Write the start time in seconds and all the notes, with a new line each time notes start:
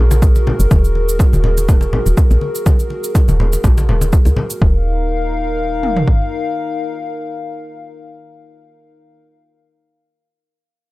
Already playing: A#1 F#4 G#4 A#4
0.11 muted conga, high conga, cabasa
0.22 kick, cabasa
0.35 muted conga, cabasa
0.47 high conga, low conga
0.59 F#1, cabasa
0.71 D#1, kick, muted conga, high conga, cabasa
0.84 cabasa
0.95 muted conga
1.09 cabasa
1.19 kick, muted conga, cabasa
1.33 D#1, high conga, cabasa
1.44 low conga
1.57 muted conga, cabasa
1.69 kick, low conga, cabasa
1.81 muted conga, cabasa
1.93 G#1, low conga
2.06 D#1, muted conga, cabasa
2.17 kick, cabasa
2.31 A#1, muted conga, cabasa
2.41 high conga
2.55 cabasa
2.66 kick, muted conga, high conga, cabasa
2.79 cabasa
2.90 muted conga
3.04 cabasa
3.15 kick, muted conga, cabasa
3.28 D#1, high conga, cabasa
3.40 low conga
3.53 muted conga, cabasa
3.64 A#1, kick, low conga, cabasa
3.78 muted conga, high conga, cabasa
3.89 D#1, high conga, low conga
4.01 muted conga, high conga, cabasa
4.13 kick, cabasa
4.25 C#2, muted conga, cabasa
4.37 high conga, low conga
4.50 cabasa
4.61 D#1 D#4 A#4 F5, kick
5.83 mid tom
5.96 floor tom
6.08 kick